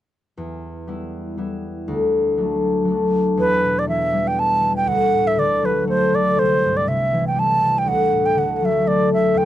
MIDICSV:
0, 0, Header, 1, 3, 480
1, 0, Start_track
1, 0, Key_signature, 1, "minor"
1, 0, Tempo, 498339
1, 363, Time_signature, 3, 2, 24, 8
1, 9102, End_track
2, 0, Start_track
2, 0, Title_t, "Flute"
2, 0, Program_c, 0, 73
2, 3272, Note_on_c, 0, 71, 86
2, 3649, Note_on_c, 0, 74, 70
2, 3664, Note_off_c, 0, 71, 0
2, 3739, Note_off_c, 0, 74, 0
2, 3744, Note_on_c, 0, 76, 74
2, 4118, Note_on_c, 0, 79, 84
2, 4132, Note_off_c, 0, 76, 0
2, 4231, Note_on_c, 0, 81, 95
2, 4246, Note_off_c, 0, 79, 0
2, 4583, Note_off_c, 0, 81, 0
2, 4589, Note_on_c, 0, 79, 85
2, 4699, Note_on_c, 0, 78, 107
2, 4714, Note_off_c, 0, 79, 0
2, 5079, Note_on_c, 0, 76, 88
2, 5093, Note_off_c, 0, 78, 0
2, 5191, Note_on_c, 0, 74, 73
2, 5206, Note_off_c, 0, 76, 0
2, 5445, Note_on_c, 0, 71, 64
2, 5460, Note_off_c, 0, 74, 0
2, 5658, Note_off_c, 0, 71, 0
2, 5672, Note_on_c, 0, 72, 83
2, 5923, Note_on_c, 0, 74, 90
2, 5937, Note_off_c, 0, 72, 0
2, 6155, Note_on_c, 0, 72, 88
2, 6169, Note_off_c, 0, 74, 0
2, 6519, Note_on_c, 0, 74, 77
2, 6533, Note_off_c, 0, 72, 0
2, 6629, Note_on_c, 0, 76, 72
2, 6643, Note_off_c, 0, 74, 0
2, 6985, Note_off_c, 0, 76, 0
2, 7006, Note_on_c, 0, 79, 67
2, 7120, Note_on_c, 0, 81, 82
2, 7134, Note_off_c, 0, 79, 0
2, 7497, Note_on_c, 0, 79, 75
2, 7511, Note_off_c, 0, 81, 0
2, 7590, Note_on_c, 0, 78, 96
2, 7605, Note_off_c, 0, 79, 0
2, 7954, Note_on_c, 0, 79, 82
2, 7968, Note_off_c, 0, 78, 0
2, 8073, Note_on_c, 0, 78, 72
2, 8087, Note_off_c, 0, 79, 0
2, 8247, Note_off_c, 0, 78, 0
2, 8247, Note_on_c, 0, 78, 58
2, 8335, Note_on_c, 0, 76, 73
2, 8349, Note_off_c, 0, 78, 0
2, 8550, Note_on_c, 0, 74, 79
2, 8564, Note_off_c, 0, 76, 0
2, 8792, Note_off_c, 0, 74, 0
2, 8798, Note_on_c, 0, 76, 74
2, 9032, Note_on_c, 0, 79, 85
2, 9046, Note_off_c, 0, 76, 0
2, 9102, Note_off_c, 0, 79, 0
2, 9102, End_track
3, 0, Start_track
3, 0, Title_t, "Harp"
3, 0, Program_c, 1, 46
3, 362, Note_on_c, 1, 40, 49
3, 841, Note_on_c, 1, 55, 42
3, 845, Note_on_c, 1, 59, 39
3, 854, Note_on_c, 1, 64, 50
3, 1313, Note_off_c, 1, 55, 0
3, 1324, Note_on_c, 1, 55, 43
3, 1326, Note_off_c, 1, 59, 0
3, 1329, Note_off_c, 1, 64, 0
3, 1330, Note_on_c, 1, 59, 40
3, 1333, Note_on_c, 1, 64, 44
3, 1808, Note_on_c, 1, 38, 57
3, 1855, Note_off_c, 1, 40, 0
3, 1855, Note_off_c, 1, 55, 0
3, 2286, Note_on_c, 1, 54, 41
3, 2290, Note_on_c, 1, 57, 40
3, 2295, Note_on_c, 1, 62, 49
3, 2739, Note_off_c, 1, 54, 0
3, 2743, Note_on_c, 1, 54, 45
3, 2765, Note_off_c, 1, 57, 0
3, 2769, Note_on_c, 1, 57, 37
3, 2791, Note_off_c, 1, 62, 0
3, 2795, Note_on_c, 1, 62, 54
3, 3249, Note_on_c, 1, 40, 57
3, 3296, Note_off_c, 1, 38, 0
3, 3297, Note_off_c, 1, 54, 0
3, 3504, Note_on_c, 1, 47, 35
3, 3731, Note_on_c, 1, 52, 47
3, 3848, Note_off_c, 1, 64, 0
3, 3975, Note_on_c, 1, 55, 59
3, 4195, Note_off_c, 1, 59, 0
3, 4199, Note_on_c, 1, 59, 57
3, 4443, Note_off_c, 1, 52, 0
3, 4455, Note_on_c, 1, 52, 46
3, 4685, Note_on_c, 1, 38, 55
3, 4736, Note_off_c, 1, 40, 0
3, 4736, Note_off_c, 1, 47, 0
3, 4736, Note_off_c, 1, 52, 0
3, 4736, Note_off_c, 1, 55, 0
3, 4943, Note_on_c, 1, 45, 47
3, 5165, Note_on_c, 1, 50, 46
3, 5216, Note_off_c, 1, 45, 0
3, 5420, Note_on_c, 1, 54, 54
3, 5491, Note_off_c, 1, 62, 0
3, 5652, Note_off_c, 1, 57, 0
3, 5656, Note_on_c, 1, 57, 56
3, 5901, Note_off_c, 1, 50, 0
3, 5912, Note_on_c, 1, 50, 48
3, 5935, Note_off_c, 1, 54, 0
3, 6132, Note_on_c, 1, 36, 57
3, 6174, Note_off_c, 1, 38, 0
3, 6174, Note_off_c, 1, 50, 0
3, 6189, Note_off_c, 1, 59, 0
3, 6393, Note_on_c, 1, 43, 38
3, 6613, Note_on_c, 1, 48, 55
3, 6654, Note_off_c, 1, 43, 0
3, 6865, Note_on_c, 1, 52, 53
3, 7087, Note_on_c, 1, 55, 58
3, 7335, Note_off_c, 1, 48, 0
3, 7347, Note_on_c, 1, 48, 46
3, 7372, Note_off_c, 1, 52, 0
3, 7559, Note_on_c, 1, 38, 58
3, 7612, Note_off_c, 1, 36, 0
3, 7612, Note_off_c, 1, 48, 0
3, 7612, Note_off_c, 1, 55, 0
3, 7822, Note_on_c, 1, 45, 36
3, 8045, Note_on_c, 1, 50, 48
3, 8091, Note_off_c, 1, 45, 0
3, 8300, Note_on_c, 1, 54, 52
3, 8522, Note_off_c, 1, 57, 0
3, 8526, Note_on_c, 1, 57, 49
3, 8773, Note_off_c, 1, 50, 0
3, 8785, Note_on_c, 1, 50, 46
3, 8810, Note_off_c, 1, 54, 0
3, 8996, Note_on_c, 1, 40, 62
3, 9049, Note_off_c, 1, 38, 0
3, 9049, Note_off_c, 1, 50, 0
3, 9102, Note_off_c, 1, 40, 0
3, 9102, Note_off_c, 1, 57, 0
3, 9102, End_track
0, 0, End_of_file